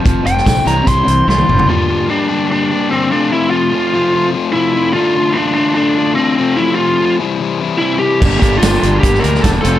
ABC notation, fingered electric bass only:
X:1
M:4/4
L:1/8
Q:1/4=147
K:Gdor
V:1 name="Fingered electric bass" clef=bass
F,,, F,,, B,,, C,, C,, C,, C,, ^F,,, | z8 | z8 | z8 |
z8 | G,,, G,,, G,,, G,,, G,,, D,, E,,, F,,, |]